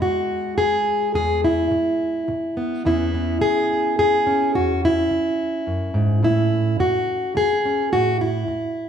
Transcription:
0.00 2.86 G#3 soft
0.00 0.57 F#4 medium
0.00 muted steel-string acoustic guitar stroke medium
0.57 1.14 G#4 loud
0.57 muted steel-string acoustic guitar stroke medium
1.14 1.70 E2 medium
1.14 1.43 G#4 medium
1.44 2.85 E4 medium
1.71 muted steel-string acoustic guitar stroke medium
2.28 muted steel-string acoustic guitar stroke medium
2.57 2.86 B3 soft
2.85 3.42 E2 medium
2.85 4.58 E3 soft
2.85 3.14 B3 soft
2.85 4.26 C#4 soft
2.85 3.41 E4 medium
3.15 4.52 B3 soft
3.41 3.98 G#4 loud
3.41 muted steel-string acoustic guitar stroke medium
3.99 4.55 G#4 loud
3.99 muted steel-string acoustic guitar stroke medium
4.27 7.65 C#4 medium
4.54 5.10 E2 medium
4.54 4.84 F#4 medium
4.85 6.23 E4 medium
5.11 muted steel-string acoustic guitar stroke medium
5.67 5.94 F#2 medium
5.94 6.23 G#2 medium
6.23 6.80 A2 medium
6.23 6.80 E4 medium
6.79 7.36 F#4 medium
6.79 muted steel-string acoustic guitar stroke medium
7.35 7.92 G#4 loud
7.35 muted steel-string acoustic guitar stroke medium
7.65 7.90 C#4 soft
7.92 8.47 A2 medium
7.92 8.21 F#4 loud
8.21 8.89 E4 medium
8.48 muted steel-string acoustic guitar stroke medium

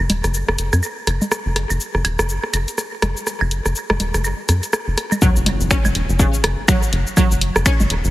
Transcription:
0.10 0.21 E1 loud
0.10 closed hi-hat medium
0.10 low conga medium
0.10 cabasa soft
0.24 0.43 F#1 loud
0.24 cross-stick soft
0.24 closed hi-hat soft
0.24 cabasa soft
0.34 cabasa medium
0.48 0.57 F#1 loud
0.48 cross-stick medium
0.58 0.70 F#1 medium
0.58 closed hi-hat medium
0.58 cabasa soft
0.73 0.81 F#2 loud
0.73 cross-stick soft
0.73 closed hi-hat soft
0.73 cabasa soft
0.73 high woodblock medium
0.83 cabasa medium
0.83 claves soft
1.07 1.19 F#1 medium
1.07 cross-stick soft
1.07 closed hi-hat medium
1.07 cabasa soft
1.22 low conga medium
1.22 cabasa soft
1.32 cross-stick medium
1.32 cabasa medium
1.46 1.65 F#1 medium
1.56 cross-stick soft
1.56 closed hi-hat medium
1.70 1.78 F#1 medium
1.70 cabasa soft
1.70 claves soft
1.80 cabasa medium
1.95 2.03 F#1 loud
1.95 cross-stick soft
2.05 2.16 E1 loud
2.05 closed hi-hat medium
2.05 cabasa soft
2.05 high woodblock medium
2.19 2.38 F#1 loud
2.19 cross-stick medium
2.19 cabasa soft
2.29 cabasa medium
2.43 cross-stick soft
2.53 2.65 F#1 medium
2.53 closed hi-hat medium
2.53 cabasa soft
2.53 claves soft
2.68 closed hi-hat soft
2.68 cabasa soft
2.78 cross-stick soft
2.78 cabasa medium
3.02 3.14 F#1 medium
3.02 cross-stick medium
3.02 closed hi-hat medium
3.02 low conga medium
3.02 cabasa soft
3.17 cabasa soft
3.27 cross-stick soft
3.27 cabasa medium
3.41 3.60 F#1 loud
3.41 claves soft
3.41 high woodblock medium
3.51 closed hi-hat medium
3.51 cabasa soft
3.65 3.74 F#1 medium
3.65 cross-stick soft
3.65 cabasa soft
3.76 cabasa medium
3.90 3.98 F#1 loud
3.90 cross-stick medium
3.90 low conga medium
4.00 4.12 E1 loud
4.00 closed hi-hat medium
4.00 low conga medium
4.00 cabasa soft
4.14 4.33 F#1 loud
4.14 cross-stick soft
4.14 closed hi-hat soft
4.14 cabasa soft
4.24 cabasa medium
4.24 claves soft
4.49 4.60 F#2 medium
4.49 cross-stick soft
4.49 closed hi-hat medium
4.49 cabasa medium
4.63 closed hi-hat soft
4.63 cabasa soft
4.73 cross-stick medium
4.73 cabasa medium
4.73 high woodblock medium
4.87 4.96 F#1 medium
4.98 cross-stick soft
4.98 closed hi-hat medium
4.98 cabasa soft
5.12 low conga medium
5.12 cabasa soft
5.12 claves soft
5.22 5.27 F#3 medium
5.22 kick loud
5.22 impact medium
5.22 cabasa medium
5.36 5.55 F#1 loud
5.36 cabasa soft
5.46 closed hi-hat medium
5.46 low conga medium
5.61 5.69 F#1 medium
5.61 cabasa soft
5.71 5.74 C#4 medium
5.71 finger snap loud
5.71 kick loud
5.71 cabasa medium
5.85 5.93 F#1 loud
5.85 low conga medium
5.85 cabasa soft
5.85 high woodblock medium
5.95 6.07 E1 loud
5.95 closed hi-hat medium
6.09 6.28 F#1 loud
6.09 cabasa soft
6.19 6.25 C#3 medium
6.19 kick loud
6.19 cabasa medium
6.34 cabasa soft
6.44 6.55 F#1 medium
6.44 cross-stick medium
6.44 closed hi-hat medium
6.68 6.77 F#3 medium
6.68 finger snap loud
6.68 kick loud
6.68 cabasa medium
6.83 cabasa soft
6.93 7.04 F#1 medium
6.93 closed hi-hat medium
7.07 cabasa soft
7.17 7.23 F#3 medium
7.17 kick loud
7.17 cabasa medium
7.17 high woodblock medium
7.31 7.50 F#1 loud
7.31 cabasa soft
7.41 closed hi-hat loud
7.56 7.64 F#1 medium
7.56 cross-stick medium
7.56 cabasa soft
7.66 7.69 C#4 medium
7.66 finger snap loud
7.66 kick loud
7.66 cabasa medium
7.80 7.88 F#1 loud
7.80 low conga medium
7.80 cabasa soft
7.90 8.02 E1 loud
7.90 closed hi-hat loud
8.05 8.11 F#1 loud
8.05 cabasa soft

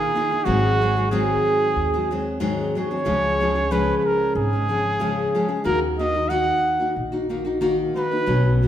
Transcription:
0.00 0.14 D#3 medium
0.00 0.15 A#3 medium
0.00 0.15 D#4 medium
0.00 0.16 F4 medium
0.00 0.46 G#4 medium
0.15 0.31 D#3 medium
0.15 0.31 A#3 medium
0.15 0.31 D#4 medium
0.15 0.30 F4 medium
0.31 0.46 A#3 soft
0.31 0.46 D#4 soft
0.31 0.46 F4 soft
0.45 1.31 G#1 medium
0.45 0.81 G#2 medium
0.45 0.81 D#3 medium
0.45 0.80 F#3 medium
0.45 0.81 G#3 medium
0.45 0.81 C4 medium
0.45 1.11 F#4 medium
0.45 0.82 G#4 medium
0.81 0.96 F#3 soft
0.81 0.96 G#3 medium
0.81 0.96 C4 medium
0.81 0.95 G#4 medium
0.97 1.11 F#3 soft
0.97 1.11 G#3 soft
0.97 1.11 C4 soft
0.97 1.11 G#4 soft
1.11 1.94 G#2 medium
1.11 1.94 D#3 medium
1.11 1.94 F#3 medium
1.11 1.94 G#3 medium
1.11 1.93 C4 medium
1.11 2.37 G#4 medium
1.11 1.93 G#4 medium
1.76 2.60 D#2 medium
1.94 2.10 F#3 soft
1.94 2.10 G#3 soft
1.94 2.11 C4 soft
1.94 2.11 G#4 soft
2.11 2.39 F#3 medium
2.11 2.39 G#3 medium
2.11 2.39 C4 medium
2.11 2.40 G#4 medium
2.40 2.75 G#2 medium
2.40 2.75 D#3 medium
2.40 2.74 F#3 medium
2.40 2.75 G#3 medium
2.40 2.76 C4 medium
2.40 2.76 G#4 medium
2.75 2.91 F#3 medium
2.75 2.90 G#3 medium
2.75 2.90 C4 medium
2.75 2.89 G#4 medium
2.75 3.73 C#5 medium
2.91 3.05 F#3 soft
2.91 3.05 G#3 soft
2.91 3.05 C4 soft
2.91 3.05 G#4 medium
3.05 3.90 C#2 medium
3.05 3.40 C#3 medium
3.05 3.39 F3 medium
3.05 3.40 G#3 medium
3.05 3.41 C#4 medium
3.05 3.41 G#4 medium
3.40 3.55 F3 medium
3.40 3.55 G#3 medium
3.40 3.55 C#4 medium
3.40 3.54 G#4 medium
3.55 3.70 G#3 soft
3.55 3.70 C#4 soft
3.55 3.70 G#4 soft
3.71 4.53 C#3 medium
3.71 4.53 F3 medium
3.71 4.53 G#3 medium
3.71 4.52 C#4 medium
3.71 4.52 G#4 medium
3.71 3.98 B4 medium
3.98 4.08 B4 medium
4.06 4.35 A#4 medium
4.35 5.20 G#1 medium
4.35 5.62 G#4 medium
4.53 4.68 G#3 soft
4.53 4.68 C#4 soft
4.53 4.69 G#4 soft
4.69 4.99 F3 medium
4.69 5.00 G#3 medium
4.69 5.00 C#4 soft
4.69 5.00 G#4 medium
4.99 5.35 C#3 medium
4.99 5.33 F3 medium
4.99 5.34 G#3 medium
4.99 5.35 C#4 medium
4.99 5.35 G#4 medium
5.35 5.50 F3 medium
5.35 5.49 G#3 medium
5.35 5.48 C#4 medium
5.35 5.47 G#4 medium
5.48 5.64 G#3 soft
5.48 5.64 C#4 soft
5.48 5.64 G#4 soft
5.64 6.50 D#2 medium
5.64 5.98 D#3 medium
5.64 5.99 A#3 medium
5.64 5.99 D#4 medium
5.64 6.00 F#4 medium
5.64 5.80 A#4 medium
5.99 6.15 D#3 medium
5.99 6.15 A#3 medium
5.99 6.14 D#4 medium
5.99 6.13 F#4 medium
5.99 6.30 D#5 medium
6.14 6.29 A#3 soft
6.14 6.29 D#4 soft
6.14 6.30 F#4 soft
6.29 6.80 D#3 medium
6.29 6.80 A#3 medium
6.29 6.79 D#4 medium
6.29 6.78 F#4 medium
6.29 6.95 F#5 medium
6.80 7.12 A#3 soft
6.80 7.12 D#4 soft
6.80 7.11 F#4 soft
6.96 7.82 A#1 medium
7.12 7.29 A#3 soft
7.12 7.29 D#4 soft
7.12 7.29 F#4 soft
7.29 7.46 D#3 medium
7.29 7.45 A#3 medium
7.29 7.45 D#4 soft
7.29 7.43 F#4 medium
7.45 7.60 A#3 soft
7.45 7.60 D#4 soft
7.45 7.60 F#4 soft
7.61 7.94 D#3 medium
7.61 7.95 A#3 medium
7.61 7.96 D#4 medium
7.61 7.96 F#4 medium
7.95 8.12 D#3 medium
7.95 8.12 A#3 medium
7.95 8.12 D#4 medium
7.95 8.10 F#4 medium
7.95 8.59 B4 medium
8.11 8.27 A#3 soft
8.11 8.27 D#4 soft
8.11 8.26 F#4 soft
8.26 8.68 B1 medium
8.26 8.62 B2 medium
8.26 8.61 F#3 medium
8.26 8.62 B3 medium
8.26 8.62 C#4 medium
8.26 8.63 F#4 medium
8.62 8.68 F#3 medium
8.62 8.68 B3 soft
8.62 8.68 C#4 medium
8.62 8.68 F#4 medium

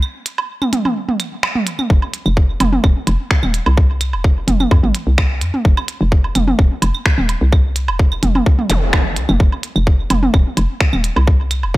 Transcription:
0.02 claves medium
0.26 closed hi-hat medium
0.38 high woodblock medium
0.62 high tom medium
0.62 claves medium
0.73 closed hi-hat medium
0.73 mid tom medium
0.85 high tom medium
0.85 high woodblock soft
1.09 mid tom medium
1.20 closed hi-hat medium
1.20 claves medium
1.43 finger snap loud
1.43 high woodblock medium
1.55 mid tom medium
1.67 closed hi-hat medium
1.79 high tom soft
1.79 claves medium
1.90 2.00 F1 loud
1.90 kick loud
2.02 high woodblock soft
2.14 closed hi-hat medium
2.26 2.56 F1 loud
2.26 claves medium
2.37 kick loud
2.60 2.79 F1 medium
2.60 closed hi-hat medium
2.60 mid tom loud
2.60 high woodblock medium
2.73 high tom medium
2.84 2.93 D#1 loud
2.84 kick loud
2.84 claves medium
3.07 3.17 F1 loud
3.07 closed hi-hat medium
3.07 high woodblock soft
3.31 finger snap loud
3.31 kick loud
3.43 3.61 D#1 medium
3.43 high tom medium
3.43 claves medium
3.54 closed hi-hat medium
3.66 4.15 C2 medium
3.66 high woodblock medium
3.77 kick loud
4.01 closed hi-hat medium
4.01 claves medium
4.13 4.44 F1 loud
4.13 high woodblock soft
4.24 kick loud
4.48 4.66 F1 medium
4.48 closed hi-hat medium
4.48 mid tom loud
4.60 high tom medium
4.60 claves medium
4.71 4.81 F2 medium
4.71 kick loud
4.71 high woodblock medium
4.83 4.92 G#1 medium
4.83 mid tom medium
4.95 closed hi-hat medium
5.07 5.43 C2 medium
5.18 finger snap loud
5.18 kick loud
5.18 claves medium
5.18 high woodblock soft
5.41 5.51 F2 loud
5.41 closed hi-hat medium
5.54 high tom medium
5.65 5.75 F1 loud
5.65 kick loud
5.77 claves medium
5.77 high woodblock medium
5.88 closed hi-hat loud
6.01 6.31 F1 loud
6.12 kick loud
6.24 high woodblock soft
6.35 6.54 F1 medium
6.35 closed hi-hat medium
6.35 mid tom loud
6.35 claves medium
6.48 high tom medium
6.59 6.68 D#1 loud
6.59 kick loud
6.82 6.92 F1 loud
6.82 closed hi-hat loud
6.82 high woodblock medium
6.95 claves medium
7.06 finger snap loud
7.06 kick loud
7.18 7.36 D#1 medium
7.18 high tom medium
7.29 closed hi-hat medium
7.29 high woodblock soft
7.41 7.90 C2 medium
7.52 kick loud
7.52 claves medium
7.76 closed hi-hat medium
7.88 8.19 F1 loud
7.88 high woodblock medium
7.99 kick loud
8.12 claves medium
8.23 8.41 F1 medium
8.23 closed hi-hat medium
8.23 mid tom medium
8.35 high tom medium
8.35 high woodblock soft
8.46 kick loud
8.59 mid tom medium
8.70 9.18 F1 medium
8.70 closed hi-hat medium
8.70 zap medium
8.70 claves medium
8.93 finger snap loud
8.93 kick loud
8.93 high woodblock medium
9.16 9.26 C2 medium
9.16 closed hi-hat medium
9.29 9.38 F1 loud
9.29 high tom medium
9.29 claves medium
9.40 9.50 F1 loud
9.40 kick loud
9.52 high woodblock soft
9.63 closed hi-hat medium
9.76 10.06 F1 loud
9.76 claves medium
9.87 kick loud
10.10 10.29 F1 medium
10.10 closed hi-hat medium
10.10 mid tom medium
10.10 high woodblock medium
10.23 high tom medium
10.34 10.43 D#1 loud
10.34 kick loud
10.34 claves medium
10.57 10.67 F1 loud
10.57 closed hi-hat medium
10.57 high woodblock soft
10.80 finger snap loud
10.80 kick loud
10.93 11.11 D#1 medium
10.93 high tom medium
10.93 claves medium
11.04 closed hi-hat medium
11.16 11.65 C2 medium
11.16 high woodblock medium
11.27 kick loud
11.51 closed hi-hat medium
11.51 claves medium
11.63 11.77 F1 loud
11.63 high woodblock soft
11.74 kick loud

